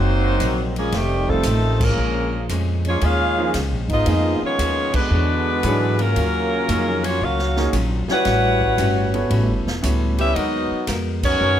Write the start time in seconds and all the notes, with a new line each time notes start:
Already playing: F#1 C3 D#3 F#3 A#3 C4 D#4 F#4 C5
0.39 A#1 C3 F#3 A#3 D#4, kick, hi-hat pedal, ride
0.76 F3 G#3 A#3 C#4 G#4, ride
0.92 F1 F2 D#3 G3 A3 C4 G4, kick, snare, ride
1.28 C3 D#3 F3 G3 A3 C4 D#4 F4 A4, kick
1.43 A1 F2 D#3 A3 C4, kick, hi-hat pedal, ride
1.81 C#3 F3 G#3 A#3 C#4 F4 A#4, kick, crash
1.97 A#1 A#2 F3 G#3 C#4
2.49 F2 A#2 F3 G#3 C#4, kick, hi-hat pedal, ride
2.84 F3 G#3 A#3 C#4 F4 G#4 C#5, ride
3.00 D#2 A#2 F3 G#3 C#4 F4 G#4 A#4 F5, kick, ride
3.38 F3 A#3 D#4 G#4
3.54 C#2 A#2 F3 G#3 C#4, kick, snare, hi-hat pedal, ride
3.71 A#1
3.88 G#1 G#3 B3 D#4, kick, ride
3.92 B3 F4 G#4 D#5
4.06 F2 F3 A#3 B3 D#4 G#4, kick, ride
4.41 D#3 G#3 B3 C#4 F4 G#4 C#5, muted upright bass stroke
4.59 D#2 F3 B3 D#4 G#4, kick, hi-hat pedal, ride
4.93 D3 G#3 B3 D4 F#4 B4, muted upright bass stroke, kick, crash
5.10 E2 E3 D4 G#4 C#5
5.63 G#2 E3 F#3 B3 D4 E4 G#4 C#5, kick, hi-hat pedal, ride
5.98 C#3 F#3 A#3 C#4 F4 A#4, ride
6.16 D#2 D#3 F#3 C#4 F4, kick, ride
6.68 F2 D#3 F#3 A#3 C#4 D#4 F4 G#4 C#5, kick, hi-hat pedal, ride
7.04 F#3 A#3 C#4 F4 F#4 C#5, ride
7.21 C#2 D#3 F#3 A#3 C#4 F4 F#4 A#4 F5, kick
7.39 snare
7.56 A#3 D#4 G#4 C#5, snare
7.73 A#1 D#3 F#3 C#4 F4, kick, hi-hat pedal, ride
8.08 G3 C#4 E4 F#4 B4 C#5 F#5, muted upright bass stroke, snare
8.25 A1 A2 G3 C#4 F#4, kick, snare, ride
8.61 kick
8.78 G1 A2 G3 C#4 F#4, kick, hi-hat pedal, ride
9.14 B3 E4 A4 C#5, ride
9.29 A1 A2 G3 C#4 F#4, kick, ride
9.48 G1
9.65 E1, snare
9.82 C#2 A2 G3 B3 C#4 E4 F#4 A4 C#5, kick, hi-hat pedal, ride
10.18 G3 C#4 E4 G4 B4 E5, ride
10.34 D#2 F#3 G#3 B3 D#4 F#4 A#4 D#5, kick, ride
10.71 muted upright bass stroke
10.87 F2 G#3 B3 F#4 A#4, kick, snare, hi-hat pedal, ride
11.23 D#3 F#3 B3 C#4 F#4 A#4 C#5, kick, crash
11.40 F#2 G#3 B3 F#4 A#4